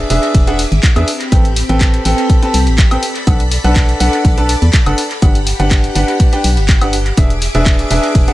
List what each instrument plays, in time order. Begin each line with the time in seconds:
Already playing: string machine G#4 E5 D6
0.10 fm bass E1, grand piano D4 G#4 B4 E5, snare, closed hi-hat, open hi-hat
0.23 closed hi-hat
0.34 fm bass E1, kick, closed hi-hat, open hi-hat
0.47 grand piano D4 G#4 B4 F#5, closed hi-hat
0.59 closed hi-hat, open hi-hat
0.72 fm bass G#1, snare, closed hi-hat
0.83 kick, snare, clap, closed hi-hat
0.96 fm bass E2, grand piano D4 G#4 B4 E5, closed hi-hat, high woodblock
1.08 string machine C4 G4 B5, closed hi-hat, open hi-hat
1.20 snare, closed hi-hat
1.32 fm bass A1, grand piano C4 A4 B4 G5, kick, closed hi-hat
1.45 closed hi-hat
1.56 closed hi-hat, open hi-hat
1.69 fm bass A1, grand piano C4 A4 B4 G5, closed hi-hat
1.81 kick, snare, clap, closed hi-hat
1.94 closed hi-hat
2.05 fm bass A1, grand piano C4 A4 B4 G5, closed hi-hat, open hi-hat
2.18 closed hi-hat
2.30 kick, closed hi-hat
2.42 grand piano C4 A4 B4 A5, closed hi-hat
2.54 fm bass C2, snare, closed hi-hat, open hi-hat
2.67 fm bass A1, snare, closed hi-hat
2.78 kick, snare, clap, closed hi-hat
2.91 grand piano C4 A4 B4 G5, closed hi-hat, high woodblock
3.03 string machine A4 D5, closed hi-hat, open hi-hat
3.16 closed hi-hat
3.27 fm bass B1, grand piano D4 A4 B4 F#5, kick, closed hi-hat
3.40 closed hi-hat
3.52 snare, closed hi-hat, open hi-hat
3.64 fm bass B1, grand piano D4 A4 B4 F#5, snare, closed hi-hat
3.76 kick, snare, clap, closed hi-hat
3.89 snare, closed hi-hat
4.00 fm bass B1, grand piano D4 A4 B4 F#5, snare, closed hi-hat, open hi-hat
4.13 closed hi-hat
4.25 fm bass B1, kick, closed hi-hat, open hi-hat
4.37 grand piano D4 A4 B4 A5, closed hi-hat
4.49 closed hi-hat, open hi-hat
4.62 fm bass E2, snare, closed hi-hat
4.73 kick, snare, clap, closed hi-hat
4.86 fm bass F#1, grand piano D4 A4 B4 F#5, closed hi-hat, high woodblock
4.98 closed hi-hat, open hi-hat
5.11 snare, closed hi-hat
5.22 fm bass G1, grand piano D4 G4 B4 F#5, string machine G4 F#5, kick, closed hi-hat
5.35 closed hi-hat
5.47 closed hi-hat, open hi-hat
5.59 fm bass G1, grand piano D4 G4 B4 F#5, closed hi-hat
5.71 kick, snare, clap, closed hi-hat
5.84 closed hi-hat
5.95 fm bass G1, grand piano D4 G4 B4 F#5, closed hi-hat, open hi-hat
6.08 closed hi-hat
6.20 kick, closed hi-hat
6.33 grand piano D4 G4 B4 G5, closed hi-hat
6.44 fm bass B1, snare, closed hi-hat, open hi-hat
6.57 fm bass G1, snare, closed hi-hat
6.69 kick, snare, clap, closed hi-hat
6.81 grand piano D4 G4 B4 F#5, closed hi-hat, high woodblock
6.93 closed hi-hat, open hi-hat
7.06 closed hi-hat
7.17 fm bass E1, grand piano D4 G#4 B4 E5, string machine G#4 E5 D6, kick, closed hi-hat
7.30 closed hi-hat
7.42 snare, closed hi-hat, open hi-hat
7.55 fm bass E1, grand piano D4 G#4 B4 E5, snare, closed hi-hat
7.66 kick, snare, clap, closed hi-hat
7.79 snare, closed hi-hat
7.91 fm bass E1, grand piano D4 G#4 B4 E5, snare, closed hi-hat, open hi-hat
8.03 closed hi-hat
8.15 fm bass E1, kick, closed hi-hat, open hi-hat
8.28 grand piano D4 G#4 B4 F#5, closed hi-hat